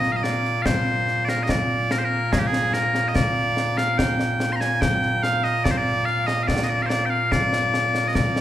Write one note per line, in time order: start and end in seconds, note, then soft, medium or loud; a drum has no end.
0.00 8.41 A#2 medium
0.00 8.41 A#3 medium
0.00 0.12 D#5 medium
0.00 snare soft
0.12 0.16 F5 medium
0.16 0.23 D#5 medium
0.23 0.62 D5 medium
0.23 snare medium
0.45 snare soft
0.62 1.25 C5 medium
0.62 0.66 F5 medium
0.62 concert bass drum medium
0.62 snare medium
1.08 snare soft
1.25 1.43 A#4 medium
1.25 1.29 D5 medium
1.25 snare medium
1.43 1.50 D#5 medium
1.49 1.92 D5 medium
1.49 concert bass drum soft
1.49 snare medium
1.91 1.98 A#4 medium
1.91 snare medium
1.98 2.05 C5 medium
2.05 2.32 A#4 medium
2.32 2.38 G#4 medium
2.32 concert bass drum medium
2.32 snare medium
2.38 2.47 G4 medium
2.47 2.74 G#4 medium
2.53 snare medium
2.74 3.08 A#4 medium
2.74 snare medium
2.95 snare medium
3.08 3.15 D#5 medium
3.15 3.77 D5 loud
3.15 concert bass drum medium
3.15 snare medium
3.57 snare medium
3.77 3.98 F5 medium
3.77 snare medium
3.98 4.52 G5 medium
3.98 concert bass drum soft
3.98 snare medium
4.20 snare medium
4.40 snare medium
4.52 4.61 A#5 medium
4.52 4.56 C6 medium
4.61 4.81 G#5 loud
4.61 snare medium
4.81 5.23 G5 loud
4.81 concert bass drum medium
4.81 snare medium
5.03 snare soft
5.23 5.44 F5 loud
5.23 snare medium
5.44 5.64 D#5 loud
5.44 snare soft
5.64 5.71 D5 medium
5.64 concert bass drum medium
5.64 snare medium
5.71 5.78 C5 medium
5.78 6.05 D5 loud
6.05 6.26 F5 loud
6.05 snare soft
6.26 6.43 D#5 loud
6.26 snare medium
6.43 6.47 F5 medium
6.47 6.64 D5 medium
6.47 concert bass drum soft
6.47 snare medium
6.64 6.69 D#5 medium
6.69 6.82 D5 loud
6.82 6.89 C5 medium
6.82 6.86 F5 medium
6.89 7.05 D5 loud
6.89 snare medium
7.05 7.10 G5 medium
7.10 7.32 F5 medium
7.32 8.08 D5 medium
7.32 concert bass drum medium
7.32 snare medium
7.53 snare medium
7.74 snare medium
7.95 snare medium
8.08 8.15 D#5 medium
8.15 8.41 D5 medium
8.15 concert bass drum medium
8.15 snare medium
8.36 snare medium